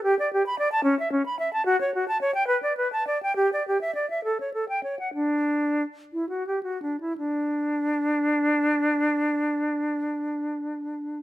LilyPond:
\new Staff \with { instrumentName = "Flute" } { \time 6/8 \key d \major \tempo 4. = 63 g'16 d''16 g'16 b''16 d''16 a''16 cis'16 e''16 cis'16 b''16 e''16 a''16 | fis'16 cis''16 fis'16 a''16 cis''16 g''16 b'16 d''16 b'16 a''16 d''16 g''16 | g'16 d''16 g'16 e''16 d''16 e''16 a'16 cis''16 a'16 g''16 cis''16 fis''16 | d'4. e'16 fis'16 g'16 fis'16 d'16 e'16 |
d'2.~ | d'2. | }